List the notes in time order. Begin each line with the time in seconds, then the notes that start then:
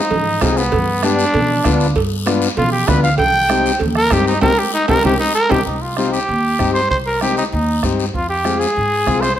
Already playing: D#4
0.11 G#2, cowbell, high conga, low conga, long guiro
0.41 C2 C4 D#4 F4 G#4, bombo low, bombo rim, cowbell, high conga, low timbale, short guiro
0.57 B3, short guiro
0.72 G2, bombo low, cowbell, high conga, low conga, long guiro
1.03 B3 D4 G4, bombo rim, cowbell, high conga, short guiro
1.19 short guiro
1.34 B2, cowbell, high conga, low conga, long guiro
1.64 D2 B3 D4 F4, bombo low, bombo rim, cowbell, high conga, short guiro
1.80 short guiro
1.96 G2, bombo low, cowbell, high conga, long guiro
2.26 B3 D4 F4, bombo rim, cowbell, high conga, short guiro
2.42 short guiro
2.57 B2 F4, cowbell, high conga, low conga, long guiro
2.72 G4
2.87 D2 B3 D4 F4 B4, bombo low, bombo rim, cowbell, high conga, low conga, low timbale, short guiro
3.03 F5, short guiro
3.18 C2 G5, bombo low, cowbell, high conga, low conga, long guiro
3.49 C4 D#4 G4, bombo rim, cowbell, high conga, short guiro
3.66 short guiro
3.79 D#2, cowbell, high conga, low conga, long guiro
3.95 A#4, bombo rim
4.10 G2 C4 D#4 G4, bombo low, bombo rim, cowbell, high conga, short guiro
4.27 D#4, short guiro
4.41 C2 C4 D#4 G4 A#4, bombo low, high conga, high timbale, long guiro
4.59 G4
4.74 D#4
4.88 C2 C4 D#4 G4 A#4, bombo low, high conga, high timbale, long guiro
5.03 C2 C4 D#4 G4, bombo low, high conga, high timbale, long guiro
5.20 D#4
5.35 A#4
5.49 C2 C4 D#4 G4, bombo low, high conga, high timbale, long guiro
5.66 C2 D#4, bombo low, long guiro
5.82 F4
5.97 C4 D#4 F4 G4, bombo rim, high conga, short guiro
6.12 G4, short guiro
6.28 D#2, high conga, long guiro
6.59 G2 C4 D#4 G4, bombo low, bombo rim, high conga, short guiro
6.74 C5, short guiro
6.90 C2 C5, bombo low, high conga, long guiro
7.07 A#4
7.21 C4 D#4 G4, bombo rim, high conga, short guiro
7.37 D#4, short guiro
7.52 D#2 D#4, high conga, long guiro
7.83 G2 C4 D#4 G4, bombo low, bombo rim, high conga, short guiro
8.00 short guiro
8.14 F2 F4, bombo low, high conga, long guiro
8.29 G4
8.45 C4 F4 G#4, bombo rim, high conga, short guiro
8.60 G#4, short guiro
8.75 G#2, high conga, long guiro
9.06 C2 C4 F4 G#4, bombo low, bombo rim, high conga, short guiro
9.21 C5, bombo rim, short guiro
9.36 C5